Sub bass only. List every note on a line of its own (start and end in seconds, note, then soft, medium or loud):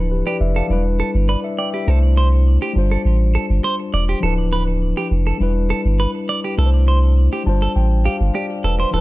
0.00 0.23 D1 loud
0.41 0.62 F1 loud
0.70 1.02 E1 loud
1.15 1.36 G1 medium
1.88 2.58 C2 loud
2.76 2.97 G1 medium
3.05 3.37 A1 loud
3.50 3.60 G1 medium
3.94 4.15 E1 medium
4.23 4.93 D1 loud
5.11 5.32 F1 loud
5.41 5.73 E1 loud
5.85 6.06 G1 medium
6.58 7.29 C2 loud
7.47 7.68 G1 medium
7.76 8.08 A1 loud
8.21 8.31 G1 medium
8.64 8.85 E1 medium
8.94 9.01 D1 loud